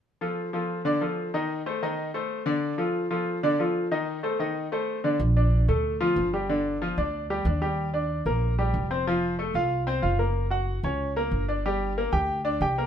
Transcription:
X:1
M:4/4
L:1/8
Q:1/4=186
K:Bb
V:1 name="Grand piano"
z [F,FA]2 [F,FA]2 [D,Dd] [F,FA]2 | [E,Ee]2 [A,Ac] [E,Ee]2 [A,Ac]2 [D,Dd]- | [D,Dd] [F,FA]2 [F,FA]2 [D,Dd] [F,FA]2 | [E,Ee]2 [A,Ac] [E,Ee]2 [A,Ac]2 [D,Dd] |
z [Dd]2 [A,A]2 [F,F]2 [G,G] | [D,D]2 [F,F] [Dd]2 [G,G] [Dd] [G,G]- | [G,G] [Dd]2 [B,B]2 [G,G]2 [Cc] | [F,F]2 [A,A] [Ff]2 [Cc] [Ff] [B,B]- |
[B,B] [_G_g]2 [_D_d]2 [B,B]2 [=D=d] | [G,G]2 [B,B] [Gg]2 [Dd] [Gg] [B,B] |]
V:2 name="Upright bass" clef=bass
z8 | z8 | z8 | z8 |
B,,,3 D,,3 G,,,2- | G,,,3 D,,3 E,,2- | E,,3 B,,,3 F,,,2- | F,,,3 C,,3 _G,,,2- |
_G,,,3 _D,,3 =G,,,2- | G,,,3 D,,3 C,,2 |]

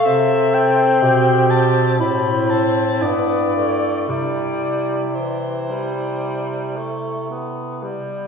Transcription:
X:1
M:4/4
L:1/8
Q:1/4=57
K:C
V:1 name="Soprano saxophone"
e g2 a b a d2 | d2 c4 z2 |]
V:2 name="Clarinet"
A2 G2 E4 | E6- E z |]
V:3 name="Tenor saxophone"
C4 C2 B, A, | G,2 E, G,2 A, B, G, |]
V:4 name="Bass clarinet" clef=bass
C,2 B,,2 A,,2 G,,2 | C,6- C, z |]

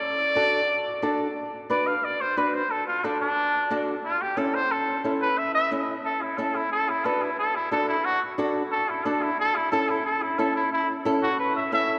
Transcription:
X:1
M:4/4
L:1/8
Q:1/4=180
K:D
V:1 name="Trumpet"
d6- d z | z2 d =f d =c B c | A =F D D4 z | =F G A =c A2 z B |
e e z2 A E A E | A E A E A E A E | F z3 A E A E | A E A E A E A E |
E z2 F B e e2 |]
V:2 name="Nylon-string guitar"
z2 [DFA] z3 [DFA] z | z2 [DFB] z3 [DFB] z | z2 [DFA] z3 [DFA] z | z2 [CEA] z3 [CEA] z |
z2 [CEA] z3 [CEA] z | z2 [DFB] z3 [DFA] z | z2 [DFA] z3 [DFA] z | z2 [CEA] z3 [CEA] z |
z2 [CEA] z3 [CEA] z |]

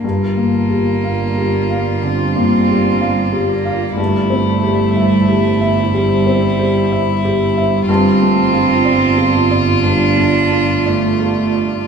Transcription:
X:1
M:4/4
L:1/8
Q:1/4=61
K:Gdor
V:1 name="Felt piano"
(3G,, B, G (3f G f (3D, B, G (3f G f | (3G,, C G (3e G e (3G, C G (3e G e | (3G,, A, F (3d F d (3G,, A, F (3d F d |]
V:2 name="Ambient pad"
[G,Fd]8 | [G,Ec]8 | [A,Fd]8 |]
V:3 name="Violin"
F8 | E8 | F8 |]
V:4 name="Cello"
B,4 C3 B, | A,4 G,3 z | C4 D2 A,2 |]
V:5 name="Double bass" clef=bass
G,,,8 | G,,,8 | G,,,8 |]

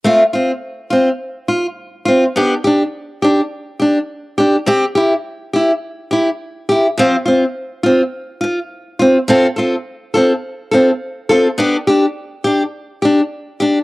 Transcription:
X:1
M:4/4
L:1/8
Q:1/4=104
K:F
V:1 name="Steel-string acoustic guitar"
[A,CF] [CF] z [CF] z F z [CF] | [=B,DG] [DG] z [DG] z [DG] z [DG] | [CG] [EG] z [EG] z [EG] z [EG] | [F,CF] [CF] z [CF] z F z [CF] |
[CFA] [CFA] z [CFA] z [CFA] z [CFA] | [=B,DG] [DG] z [DG] z [DG] z [DG] |]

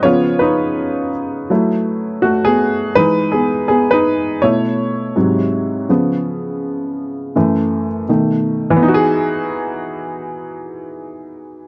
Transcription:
X:1
M:4/4
L:1/16
Q:"Swing 16ths" 1/4=82
K:E
V:1 name="Upright piano"
[^Ec]2 [DB]8- [DB]2 [A,F] [B,G]3 | B2 [B,G]2 [B,G] [DB]3 c8- | c12 z4 | [E,B,DFG]16 |]
V:2 name="Upright piano" clef=bass
[C,^E,B,]6 z2 [F,A,=E]6 z2 | [E,G,D]2 z6 [B,,A,E]4 [G,,^B,,F,]4 | [C,^E,B,]8 [F,,=E,A,]2 z2 [B,,D,A,]4 | z16 |]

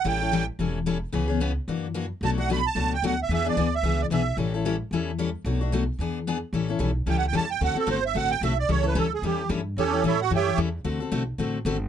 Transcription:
X:1
M:4/4
L:1/8
Q:"Swing" 1/4=222
K:Amix
V:1 name="Accordion"
g3 z4 z | z8 | a f b a2 g f e | e d2 e2 d e2 |
z8 | z8 | z4 (3g f g a g | f A =c e f g e d |
c B A ^G =G2 z2 | [CGAc]2 [EAce] [Ff] [Gceg]2 z2 | z8 |]
V:2 name="Steel-string acoustic guitar"
[E,G,CEA] [CEA] [E,G,CEA] z [E,G,CEA] z [E,G,CEA] z | [C,E,B,C^G] [B,CG] [C,E,B,CG] z [E,^A,DF] z [E,A,DF] z | [B,,F,A,DF] [A,DF] [B,,F,A,DF] z [B,,F,A,DF] z [B,,F,A,DF] z | [E,B,D^G] [B,DG] [E,B,DG] z [E,B,DG] z [E,B,DG] z |
[E,G,CEA] [CEA] [E,G,CEA] z [E,G,CEA] z [E,G,CEA] z | [B,,F,A,DF] [A,DF] [B,,F,A,DF] z [E,B,D^G] z [E,B,DG] z | [E,G,CEA] [CEA] [E,G,CEA] z [E,G,CEA] z [E,G,CEA] z | [D,A,=CFA] [CFA] [D,A,CFA] z [D,A,CFA] z [D,A,CFA] z |
[E,G,CEA] [CEA] [E,G,CEA] z [E,G,CEA] z [E,G,CEA] z | [E,G,CEA] [CEA] [E,G,CEA] z [E,G,CEA] z [E,G,CEA] z | [D,A,=CFA] [CFA] [D,A,CFA] z [D,A,CFA] z [D,A,CFA] z |]
V:3 name="Upright bass" clef=bass
A,,,4 E,,,4 | C,,4 F,,4 | B,,,4 C,,2 D,,2 | E,,2 D,,2 C,,2 B,,,2 |
A,,,4 E,,4 | B,,,4 E,,4 | A,,,2 B,,,2 C,,2 E,,2 | D,, z G,,,2 A,,,2 B,,,2 |
C,,2 D,,2 E,,2 G,,2 | E,,2 A,,2 F,,2 E,,2 | D,,2 B,,,2 A,,,2 G,,,2 |]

